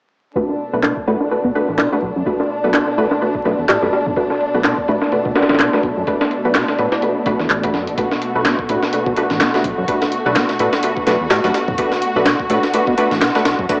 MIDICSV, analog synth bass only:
0, 0, Header, 1, 2, 480
1, 0, Start_track
1, 0, Key_signature, 2, "minor"
1, 0, Tempo, 476190
1, 362, Time_signature, 4, 2, 24, 8
1, 13910, End_track
2, 0, Start_track
2, 0, Title_t, "Analog synth bass"
2, 0, Program_c, 0, 38
2, 737, Note_on_c, 0, 35, 93
2, 841, Note_on_c, 0, 47, 85
2, 856, Note_off_c, 0, 35, 0
2, 932, Note_off_c, 0, 47, 0
2, 1083, Note_on_c, 0, 45, 96
2, 1173, Note_off_c, 0, 45, 0
2, 1319, Note_on_c, 0, 47, 40
2, 1430, Note_off_c, 0, 47, 0
2, 1454, Note_on_c, 0, 47, 98
2, 1524, Note_off_c, 0, 47, 0
2, 1698, Note_on_c, 0, 33, 75
2, 1799, Note_on_c, 0, 47, 78
2, 1814, Note_off_c, 0, 33, 0
2, 1891, Note_off_c, 0, 47, 0
2, 2038, Note_on_c, 0, 35, 77
2, 2130, Note_off_c, 0, 35, 0
2, 2179, Note_on_c, 0, 42, 102
2, 2247, Note_off_c, 0, 42, 0
2, 2661, Note_on_c, 0, 35, 91
2, 2764, Note_on_c, 0, 47, 86
2, 2779, Note_off_c, 0, 35, 0
2, 2854, Note_off_c, 0, 47, 0
2, 3002, Note_on_c, 0, 45, 93
2, 3092, Note_off_c, 0, 45, 0
2, 3480, Note_on_c, 0, 35, 105
2, 3572, Note_off_c, 0, 35, 0
2, 3618, Note_on_c, 0, 40, 83
2, 3686, Note_off_c, 0, 40, 0
2, 3724, Note_on_c, 0, 45, 91
2, 3813, Note_off_c, 0, 45, 0
2, 3858, Note_on_c, 0, 42, 76
2, 3926, Note_off_c, 0, 42, 0
2, 4096, Note_on_c, 0, 35, 87
2, 4165, Note_off_c, 0, 35, 0
2, 4579, Note_on_c, 0, 35, 96
2, 4684, Note_on_c, 0, 47, 85
2, 4700, Note_off_c, 0, 35, 0
2, 4774, Note_off_c, 0, 47, 0
2, 4924, Note_on_c, 0, 45, 92
2, 5013, Note_off_c, 0, 45, 0
2, 5165, Note_on_c, 0, 47, 41
2, 5273, Note_off_c, 0, 47, 0
2, 5296, Note_on_c, 0, 47, 95
2, 5365, Note_off_c, 0, 47, 0
2, 5542, Note_on_c, 0, 33, 75
2, 5643, Note_on_c, 0, 47, 81
2, 5658, Note_off_c, 0, 33, 0
2, 5733, Note_off_c, 0, 47, 0
2, 5880, Note_on_c, 0, 35, 78
2, 5971, Note_off_c, 0, 35, 0
2, 6020, Note_on_c, 0, 42, 108
2, 6087, Note_off_c, 0, 42, 0
2, 6500, Note_on_c, 0, 35, 98
2, 6603, Note_on_c, 0, 47, 84
2, 6618, Note_off_c, 0, 35, 0
2, 6693, Note_off_c, 0, 47, 0
2, 6843, Note_on_c, 0, 45, 90
2, 6933, Note_off_c, 0, 45, 0
2, 7319, Note_on_c, 0, 35, 105
2, 7411, Note_off_c, 0, 35, 0
2, 7459, Note_on_c, 0, 40, 81
2, 7527, Note_off_c, 0, 40, 0
2, 7559, Note_on_c, 0, 33, 95
2, 7797, Note_on_c, 0, 42, 93
2, 7812, Note_off_c, 0, 33, 0
2, 7937, Note_on_c, 0, 33, 89
2, 7952, Note_off_c, 0, 42, 0
2, 8006, Note_off_c, 0, 33, 0
2, 8418, Note_on_c, 0, 35, 92
2, 8520, Note_on_c, 0, 47, 87
2, 8535, Note_off_c, 0, 35, 0
2, 8611, Note_off_c, 0, 47, 0
2, 8762, Note_on_c, 0, 45, 92
2, 8852, Note_off_c, 0, 45, 0
2, 9003, Note_on_c, 0, 47, 41
2, 9113, Note_off_c, 0, 47, 0
2, 9138, Note_on_c, 0, 47, 91
2, 9206, Note_off_c, 0, 47, 0
2, 9379, Note_on_c, 0, 33, 79
2, 9480, Note_on_c, 0, 47, 84
2, 9495, Note_off_c, 0, 33, 0
2, 9571, Note_off_c, 0, 47, 0
2, 9721, Note_on_c, 0, 35, 78
2, 9812, Note_off_c, 0, 35, 0
2, 9859, Note_on_c, 0, 42, 106
2, 9927, Note_off_c, 0, 42, 0
2, 10339, Note_on_c, 0, 35, 95
2, 10442, Note_on_c, 0, 47, 85
2, 10457, Note_off_c, 0, 35, 0
2, 10533, Note_off_c, 0, 47, 0
2, 10682, Note_on_c, 0, 45, 92
2, 10773, Note_off_c, 0, 45, 0
2, 11163, Note_on_c, 0, 35, 104
2, 11253, Note_off_c, 0, 35, 0
2, 11300, Note_on_c, 0, 40, 85
2, 11367, Note_off_c, 0, 40, 0
2, 11399, Note_on_c, 0, 45, 99
2, 11491, Note_off_c, 0, 45, 0
2, 11534, Note_on_c, 0, 42, 75
2, 11604, Note_off_c, 0, 42, 0
2, 11774, Note_on_c, 0, 35, 89
2, 11844, Note_off_c, 0, 35, 0
2, 12256, Note_on_c, 0, 35, 88
2, 12359, Note_on_c, 0, 47, 83
2, 12374, Note_off_c, 0, 35, 0
2, 12451, Note_off_c, 0, 47, 0
2, 12597, Note_on_c, 0, 45, 95
2, 12690, Note_off_c, 0, 45, 0
2, 12841, Note_on_c, 0, 47, 40
2, 12951, Note_off_c, 0, 47, 0
2, 12977, Note_on_c, 0, 47, 93
2, 13046, Note_off_c, 0, 47, 0
2, 13214, Note_on_c, 0, 33, 82
2, 13318, Note_on_c, 0, 47, 82
2, 13333, Note_off_c, 0, 33, 0
2, 13410, Note_off_c, 0, 47, 0
2, 13559, Note_on_c, 0, 35, 73
2, 13651, Note_off_c, 0, 35, 0
2, 13699, Note_on_c, 0, 42, 109
2, 13767, Note_off_c, 0, 42, 0
2, 13910, End_track
0, 0, End_of_file